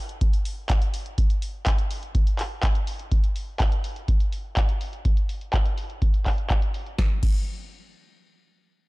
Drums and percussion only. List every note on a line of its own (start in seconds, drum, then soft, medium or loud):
0.09 closed hi-hat soft
0.21 kick loud
0.21 closed hi-hat medium
0.33 closed hi-hat soft
0.45 open hi-hat loud
0.70 kick loud
0.70 clap loud
0.70 closed hi-hat medium
0.82 closed hi-hat soft
0.94 open hi-hat medium
1.06 closed hi-hat soft
1.18 kick loud
1.18 closed hi-hat medium
1.30 closed hi-hat medium
1.42 open hi-hat loud
1.66 kick loud
1.66 clap loud
1.66 closed hi-hat medium
1.78 closed hi-hat medium
1.91 open hi-hat medium
2.03 closed hi-hat soft
2.15 kick loud
2.15 closed hi-hat medium
2.27 closed hi-hat medium
2.39 clap medium
2.39 open hi-hat loud
2.63 kick loud
2.63 clap loud
2.63 closed hi-hat medium
2.75 closed hi-hat medium
2.87 open hi-hat medium
2.99 closed hi-hat soft
3.12 kick loud
3.12 closed hi-hat medium
3.24 closed hi-hat medium
3.36 open hi-hat loud
3.60 kick loud
3.60 clap loud
3.60 closed hi-hat medium
3.72 closed hi-hat medium
3.84 open hi-hat medium
3.96 closed hi-hat soft
4.08 kick loud
4.08 closed hi-hat medium
4.20 closed hi-hat medium
4.32 open hi-hat loud
4.57 kick loud
4.57 clap loud
4.57 closed hi-hat medium
4.69 closed hi-hat medium
4.81 open hi-hat medium
4.93 closed hi-hat soft
5.05 kick loud
5.05 closed hi-hat medium
5.17 closed hi-hat medium
5.29 open hi-hat loud
5.41 closed hi-hat soft
5.53 kick loud
5.53 clap loud
5.53 closed hi-hat medium
5.66 closed hi-hat medium
5.78 open hi-hat medium
5.90 closed hi-hat soft
6.02 kick loud
6.02 closed hi-hat medium
6.14 closed hi-hat medium
6.26 kick medium
6.26 clap medium
6.26 open hi-hat loud
6.38 closed hi-hat soft
6.50 kick loud
6.50 clap loud
6.50 closed hi-hat medium
6.62 closed hi-hat medium
6.74 open hi-hat medium
6.86 closed hi-hat soft
6.98 kick loud
6.98 snare medium
7.23 kick loud
7.23 crash medium